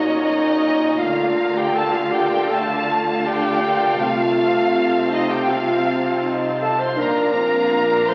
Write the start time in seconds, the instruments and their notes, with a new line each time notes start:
Already playing: double bass section A#1, cello section A#2, french horn section A#2, viola section C#4 F#4, clarinet D#4, violin section C#5 D#5 A#5
0.24 clarinet D#4, violin section D#5
0.98 double bass section D2, cello section D3, viola section A3 F4, clarinet F4, violin section F5
1.57 clarinet G4, violin section G5
1.74 clarinet A4, violin section A5
1.92 clarinet F4, violin section F5
2.11 clarinet G4, violin section G5
2.48 french horn section A3, clarinet A4, violin section A5
3.25 french horn section D4, clarinet G4, violin section G5
3.61 french horn section A#2
3.98 double bass section C2, cello section C3, french horn section A3, viola section C4, clarinet F4, violin section F5
5.10 clarinet D#4, violin section D#5
5.30 clarinet G4, violin section G5
5.49 french horn section C4, clarinet F4, violin section F5
6.22 french horn section D#4
6.61 clarinet A4, violin section A5
6.79 clarinet C5, violin section C6
6.96 double bass section A#1, cello section A#2, french horn section D4, viola section D4 F4, clarinet A#4, violin section F5 A#5
7.00 violin section A#5
7.33 french horn section C4
7.71 french horn section A#3
8.08 french horn section A3, clarinet C5, violin section C6